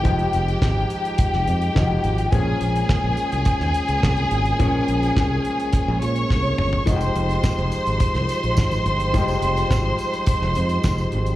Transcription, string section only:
\new Staff \with { instrumentName = "String section" } { \time 4/4 \key f \minor \tempo 4 = 106 <g' g''>1 | <aes' aes''>1~ | <aes' aes''>2~ <aes' aes''>8 <des'' des'''>4. | <c'' c'''>1~ |
<c'' c'''>1 | }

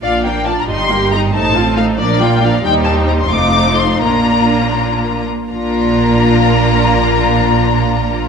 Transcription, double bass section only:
\new Staff \with { instrumentName = "Double bass section" } { \clef bass \time 6/8 \key bes \major \tempo 4. = 85 bes,,4. g,,4. | a,,4. bes,,4. | ees,4. f,,4. | bes,,2~ bes,,8 r8 |
bes,,2.~ | bes,,2. | }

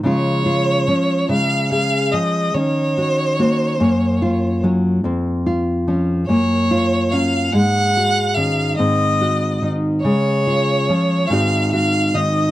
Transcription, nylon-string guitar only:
\new Staff \with { instrumentName = "Nylon-string guitar" } { \time 6/8 \key des \major \tempo 4. = 48 << { <f aes des' f'>8 f'8 des'8 aes8 aes'8 des'8 | des'8 ges'8 ges'8 bes8 f'8 des'8 | c'8 f'8 des'8 bes8 f'8 des'8 | aes8 ges'8 des'8 c'8 ges'8 ees'8 |
aes8 f'8 des'8 <ees c' ees' ges'>8 ges'8 ees'8 | } \\ { des4 f8 des4 f8 | ees4 bes8 ges,4 ges8 | f,4 f8 ges,4 ges8 | aes,4 ees8 aes,4 ees8 |
des4 f8 aes,4 ees8 | } >> }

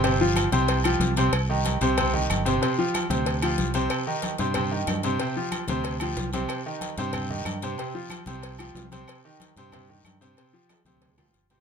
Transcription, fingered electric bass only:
\new Staff \with { instrumentName = "Fingered electric bass" } { \clef bass \time 4/4 \key c \minor \tempo 4 = 186 g,,4. c,4. c,4 | c,4. c,4. g,,4 | r4. d,4. c,4 | r4. g,4. g,4 |
r4. d,4. c,4 | r4. g,4. g,4 | r4. c,4. c,4 | r4. g,4. g,4 |
r4. d,4. g,,4 | }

